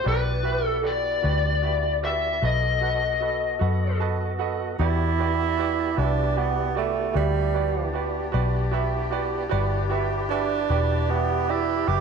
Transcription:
0.04 fingered electric bass B1, tonewheel organ B3 E4 G4 D5, grand piano F#4 G4 B4 D5
0.08 lead electric guitar B4
0.43 grand piano F#4 G4 B4 E5
0.66 lead electric guitar A4
0.82 grand piano F#4 G4 B4 D5
0.86 lead electric guitar D5
1.23 fingered electric bass D2, grand piano F#4 G4 B4 D5
1.62 grand piano F#4 G4 B4 E5
2.03 grand piano F#4 G4 B4 D5, lead electric guitar E5
2.42 fingered electric bass B1, tonewheel organ B3 F#4 A4 D#5, grand piano F#4 A4 B4 D#5, lead electric guitar D#5
2.81 grand piano F#4 A4 B4 F#5
3.21 grand piano F#4 A4 B4 D#5
3.59 fingered electric bass F#2, grand piano F#4 A4 B4 F#5
4.00 grand piano F#4 A4 B4 D#5 A5
4.39 grand piano F#4 A4 B4 D#5 F#5
4.79 fingered electric bass E2, tonewheel organ B3 E4 G4 D5, saxophone section D4 E4 G4, tenor saxophone E4, grand piano F#4 G4 B4 D5
5.19 grand piano F#4 G4 B4 D5
5.57 grand piano F#4 G4 B4 D5
5.96 fingered electric bass C2, tenor saxophone D4, grand piano F#4 G4 B4 E5
6.36 tenor saxophone B3, grand piano F#4 G4 B4 D5
6.75 tenor saxophone A3, grand piano F#4 G4 B4 D5
7.14 fingered electric bass D2, tenor saxophone G3, grand piano F#4 G4 B4 E5
7.54 grand piano F#4 G4 B4 D5
7.93 grand piano F#4 G4 B4 D5
8.32 fingered electric bass B1, grand piano F#4 G4 B4 D5
8.71 grand piano F#4 G4 B4 E5
9.11 grand piano F#4 G4 B4 D5
9.49 fingered electric bass G1, tonewheel organ E4 G4 B4 D5, grand piano F#4 G4 B4 D5
9.90 grand piano F#4 G4 B4 E5
10.29 tenor saxophone D4, grand piano F#4 G4 B4 E5
10.69 fingered electric bass E1, grand piano F#4 G4 B4 D5
11.09 tenor saxophone B3, grand piano F#4 G4 B4 E5
11.48 tenor saxophone E4, grand piano F#4 G4 B4 D5
11.87 fingered electric bass F#1, grand piano F#4 G4 B4 E5, tenor saxophone G4

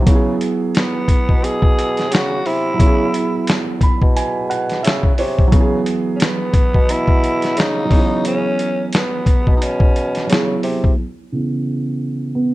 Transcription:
0.02 felt piano F#3
0.06 bassoon C#3, felt piano B3, kick, closed hi-hat
0.10 felt piano E4
0.15 felt piano G#4
0.41 closed hi-hat
0.75 tenor saxophone B3, snare, closed hi-hat
1.08 kick, closed hi-hat
1.29 bassoon B2, kick
1.44 tenor saxophone G#4, closed hi-hat
1.62 kick
1.79 closed hi-hat
1.97 snare, closed hi-hat
2.12 bassoon C#3, tenor saxophone F#4, snare, closed hi-hat
2.46 bassoon C3, tenor saxophone E4, open hi-hat
2.74 felt piano F#3
2.78 bassoon C#3, felt piano B3, kick, closed hi-hat
2.83 felt piano E4 G#4
3.14 closed hi-hat
3.47 snare, closed hi-hat
3.81 felt piano B5, kick, closed hi-hat
4.01 bassoon B2, kick
4.16 felt piano G#5, closed hi-hat
4.50 felt piano F#5, closed hi-hat
4.70 snare, closed hi-hat
4.83 bassoon C#3, felt piano E5, closed hi-hat
4.87 snare
5.03 kick
5.18 bassoon C3, felt piano C#5, open hi-hat
5.39 kick
5.47 felt piano F#3
5.52 bassoon C#3, felt piano B3, kick, closed hi-hat
5.56 felt piano E3
5.60 felt piano G#4
5.86 closed hi-hat
6.16 tenor saxophone C#4, closed hi-hat
6.22 tenor saxophone B3, snare
6.54 kick, closed hi-hat
6.74 bassoon B2, kick
6.89 tenor saxophone E4, closed hi-hat
7.08 kick
7.24 closed hi-hat
7.42 snare, closed hi-hat
7.57 bassoon C#3, tenor saxophone D#4, snare, closed hi-hat
7.85 felt piano F#3
7.89 bassoon C#3, felt piano B3, kick, open hi-hat
7.94 felt piano E3
7.99 felt piano G#4
8.25 tenor saxophone C#4, closed hi-hat
8.59 closed hi-hat
8.93 tenor saxophone B3, snare, closed hi-hat
9.26 kick, closed hi-hat
9.47 bassoon B2, kick
9.57 tenor saxophone D#4
9.62 tenor saxophone C#4, closed hi-hat
9.80 kick
9.96 closed hi-hat
10.15 snare, closed hi-hat
10.27 bassoon C#3, felt piano F#3 B3, closed hi-hat
10.32 felt piano E4 G#4, snare
10.63 bassoon C3, open hi-hat
10.84 kick
11.32 felt piano C#3 E3 B3
12.35 felt piano B3

